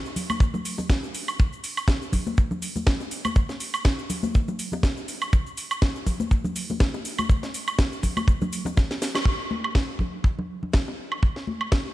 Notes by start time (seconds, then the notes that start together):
0.05 shaker
0.16 open hi-hat, low conga, shaker
0.30 high conga, high woodblock, shaker
0.40 kick, shaker
0.54 high conga, low conga, shaker
0.65 open hi-hat, shaker
0.78 high bongo, low conga, shaker
0.90 kick, snare, shaker
1.04 shaker
1.15 open hi-hat, shaker
1.28 high woodblock, shaker
1.39 kick, shaker
1.53 shaker
1.64 open hi-hat, shaker
1.77 high woodblock, shaker
1.88 kick, snare, shaker
2.02 shaker
2.12 kick, open hi-hat, low conga, shaker
2.27 high conga, shaker
2.38 kick, shaker
2.51 low conga, shaker
2.62 open hi-hat, shaker
2.76 high conga, low conga, shaker
2.87 kick, snare, shaker
3.00 high bongo, shaker
3.11 open hi-hat, shaker
3.25 high conga, high woodblock, shaker
3.36 kick, shaker
3.49 snare, shaker
3.60 open hi-hat, shaker
3.74 high woodblock, shaker
3.85 kick, snare, shaker
3.99 shaker
4.10 open hi-hat, low conga, shaker
4.23 high conga, shaker
4.35 kick, shaker
4.48 high conga, low conga, shaker
4.59 open hi-hat, shaker
4.72 high bongo, low conga, shaker
4.83 kick, snare, shaker
4.97 shaker
5.08 open hi-hat, shaker
5.22 high woodblock, shaker
5.33 kick, shaker
5.46 shaker
5.57 open hi-hat, shaker
5.71 high woodblock, shaker
5.82 kick, snare, shaker
5.96 shaker
6.06 kick, open hi-hat, low conga, shaker
6.20 high conga, shaker
6.31 kick, shaker
6.44 low conga, shaker
6.56 open hi-hat, shaker
6.69 high conga, low conga, shaker
6.80 kick, snare, shaker
6.94 high bongo, shaker
7.05 open hi-hat, shaker
7.19 high conga, high woodblock, shaker
7.30 kick, shaker
7.43 snare, high bongo, shaker
7.54 open hi-hat, shaker
7.68 high woodblock, shaker
7.79 kick, snare, shaker
7.92 shaker
8.03 kick, open hi-hat, low conga, shaker
8.17 high conga, high woodblock, shaker
8.28 kick, shaker
8.41 high conga, low conga, shaker
8.53 open hi-hat, shaker
8.65 high bongo, low conga, shaker
8.77 kick, snare, high bongo, shaker
8.91 snare, shaker
9.02 snare, open hi-hat, shaker
9.15 snare, high bongo, high woodblock, shaker
9.25 kick
9.51 high conga
9.64 high woodblock
9.75 kick, snare
9.99 kick, low conga
10.24 kick
10.39 low conga
10.63 low conga
10.73 kick, snare
10.88 high bongo
11.12 high woodblock
11.23 kick
11.36 snare
11.47 high conga
11.61 high woodblock
11.72 kick, snare